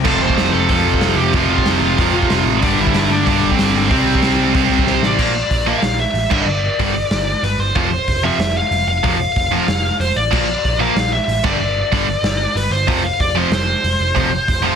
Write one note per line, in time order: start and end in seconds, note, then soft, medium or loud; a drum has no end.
0.00 2.29 C4 loud
0.05 0.19 F1 medium
0.05 0.68 F2 medium
0.05 0.69 C3 medium
0.05 0.69 F3 loud
0.05 0.21 A4 loud
0.05 kick loud
0.05 crash loud
0.21 0.35 F1 medium
0.21 0.52 C5 loud
0.30 kick medium
0.37 0.51 F1 medium
0.37 snare loud
0.37 open hi-hat medium
0.53 0.67 F1 medium
0.53 0.68 A4 loud
0.69 1.33 F2 medium
0.69 0.83 F2 medium
0.69 1.33 C3 medium
0.69 1.34 F3 loud
0.69 1.19 A4 loud
0.69 kick loud
0.69 open hi-hat medium
0.87 1.00 F1 medium
0.94 kick medium
1.01 1.16 F1 loud
1.01 snare loud
1.01 open hi-hat medium
1.16 1.31 F1 medium
1.16 1.34 G4 medium
1.33 1.48 F1 loud
1.33 1.97 F2 medium
1.33 1.98 C3 loud
1.33 1.98 F3 loud
1.33 1.49 F4 loud
1.33 kick loud
1.33 open hi-hat medium
1.50 1.64 F1 medium
1.50 2.42 F4 loud
1.58 kick medium
1.66 1.80 F1 medium
1.66 snare loud
1.66 open hi-hat medium
1.82 1.96 F1 medium
1.98 2.12 F1 medium
1.98 2.61 F2 medium
1.98 2.62 C3 loud
1.98 2.62 F3 medium
1.98 kick loud
1.98 open hi-hat medium
2.15 2.28 F1 medium
2.22 kick medium
2.30 2.44 F1 loud
2.30 snare loud
2.30 open hi-hat medium
2.46 2.60 A1 medium
2.62 2.76 G1 loud
2.62 3.25 G2 loud
2.62 3.26 D3 loud
2.62 3.27 G3 loud
2.62 2.80 D4 loud
2.62 kick loud
2.62 open hi-hat medium
2.79 2.92 G1 loud
2.79 3.11 E4 loud
2.87 kick medium
2.94 3.09 G1 loud
2.94 snare loud
2.94 open hi-hat medium
3.10 3.24 G1 medium
3.10 3.27 D4 medium
3.26 3.89 G2 medium
3.26 3.40 G2 loud
3.26 3.89 D3 medium
3.26 3.90 G3 medium
3.26 3.52 D4 medium
3.26 kick loud
3.26 open hi-hat medium
3.42 3.56 G1 medium
3.51 3.73 C4 medium
3.51 kick medium
3.59 3.73 G1 loud
3.59 snare loud
3.59 open hi-hat medium
3.75 3.89 G1 medium
3.75 4.84 C4 medium
3.89 4.04 C2 loud
3.89 4.53 C3 medium
3.89 4.54 G3 loud
3.89 4.55 C4 loud
3.89 kick loud
3.89 open hi-hat medium
4.06 4.20 C2 loud
4.15 kick medium
4.22 4.37 C2 medium
4.22 snare loud
4.22 open hi-hat medium
4.39 4.52 C2 medium
4.54 4.69 C2 medium
4.54 5.17 C3 medium
4.54 5.18 G3 medium
4.54 5.18 C4 medium
4.54 kick loud
4.54 open hi-hat medium
4.70 4.84 C2 medium
4.79 kick medium
4.86 5.00 C2 loud
4.86 5.04 C5 loud
4.86 snare medium
5.02 5.16 A1 medium
5.02 5.67 D5 loud
5.02 snare loud
5.17 5.40 A#1 medium
5.17 5.31 A#2 medium
5.17 5.31 F3 loud
5.17 5.32 A#3 loud
5.17 kick loud
5.17 crash loud
5.51 5.72 A#1 medium
5.51 kick medium
5.51 open hi-hat medium
5.67 5.80 A#2 medium
5.67 5.80 F3 loud
5.67 5.80 A#3 medium
5.67 5.99 F5 loud
5.82 6.04 A#1 medium
5.82 snare loud
5.82 open hi-hat medium
6.00 6.31 E5 loud
6.14 6.24 A1 loud
6.14 open hi-hat medium
6.30 6.41 G1 medium
6.30 6.44 G2 medium
6.30 6.44 D3 medium
6.30 6.44 G3 loud
6.30 7.47 D5 medium
6.30 kick loud
6.30 crash loud
6.46 6.67 G1 loud
6.79 7.00 G1 medium
6.79 6.92 G2 medium
6.79 6.92 D3 medium
6.79 6.93 G3 loud
6.79 kick medium
6.79 open hi-hat medium
7.11 7.32 G1 medium
7.11 snare loud
7.11 open hi-hat medium
7.43 7.53 G1 medium
7.43 7.60 B4 medium
7.43 open hi-hat medium
7.59 7.69 G1 medium
7.59 8.26 C5 medium
7.75 7.96 F1 loud
7.75 7.88 F2 medium
7.75 7.89 C3 medium
7.75 7.89 F3 loud
7.75 kick loud
7.75 open hi-hat medium
8.08 8.28 F1 medium
8.08 kick medium
8.08 open hi-hat medium
8.24 8.36 F2 loud
8.24 8.37 C3 medium
8.24 8.37 F3 loud
8.24 8.57 E5 loud
8.39 8.60 F1 medium
8.39 snare loud
8.39 open hi-hat medium
8.57 8.87 F5 loud
8.71 8.82 F1 medium
8.71 open hi-hat medium
8.87 8.97 F1 medium
8.87 9.96 F5 loud
9.03 9.24 F1 loud
9.03 9.16 F2 medium
9.03 9.16 C3 medium
9.03 9.17 F3 loud
9.03 kick loud
9.03 open hi-hat medium
9.36 9.57 F1 medium
9.36 kick medium
9.36 open hi-hat medium
9.51 9.64 F2 medium
9.51 9.65 C3 medium
9.51 9.65 F3 loud
9.68 9.88 F1 medium
9.68 snare loud
9.68 open hi-hat medium
10.00 10.10 F1 medium
10.00 10.17 C5 medium
10.00 open hi-hat medium
10.16 10.27 A1 medium
10.16 10.80 D5 medium
10.31 10.53 A#1 medium
10.31 10.44 A#2 medium
10.31 10.45 F3 loud
10.31 10.45 A#3 loud
10.31 kick loud
10.31 crash loud
10.65 10.85 A#1 medium
10.65 kick medium
10.65 open hi-hat medium
10.80 10.93 A#2 medium
10.80 10.93 F3 medium
10.80 10.93 A#3 loud
10.80 11.13 F5 medium
10.96 11.17 A#1 medium
10.96 snare loud
10.96 open hi-hat medium
11.13 11.42 E5 medium
11.28 11.38 A1 medium
11.28 open hi-hat medium
11.44 11.55 G1 medium
11.44 11.57 G2 medium
11.44 11.57 D3 loud
11.44 11.57 G3 loud
11.44 12.60 D5 medium
11.44 kick loud
11.44 crash medium
11.60 11.81 G1 medium
11.92 12.13 G1 medium
11.92 12.05 G2 loud
11.92 12.05 D3 medium
11.92 12.05 G3 loud
11.92 kick medium
11.92 open hi-hat medium
12.23 12.44 G1 medium
12.23 snare loud
12.23 open hi-hat medium
12.55 12.66 G1 medium
12.55 12.72 B4 medium
12.55 open hi-hat medium
12.71 12.88 G1 medium
12.71 13.05 C5 medium
12.88 13.09 F1 loud
12.88 13.01 F2 medium
12.88 13.01 C3 loud
12.88 13.01 F3 loud
12.88 kick loud
12.88 open hi-hat medium
13.04 13.20 F5 medium
13.20 13.41 F1 medium
13.20 13.38 D5 loud
13.20 kick medium
13.20 open hi-hat medium
13.35 13.49 F2 loud
13.35 13.49 C3 loud
13.35 13.49 F3 loud
13.35 14.75 C5 medium
13.51 13.72 F1 medium
13.51 snare loud
13.51 open hi-hat medium
13.84 13.94 F1 medium
13.84 open hi-hat medium
14.00 14.10 F1 medium
14.15 14.37 F1 loud
14.15 14.28 F2 medium
14.15 14.28 C3 loud
14.15 14.29 F3 loud
14.15 kick loud
14.15 open hi-hat medium
14.48 14.68 F1 medium
14.48 kick medium
14.48 open hi-hat medium
14.62 14.75 F2 medium
14.62 14.75 C3 medium
14.62 14.75 F3 loud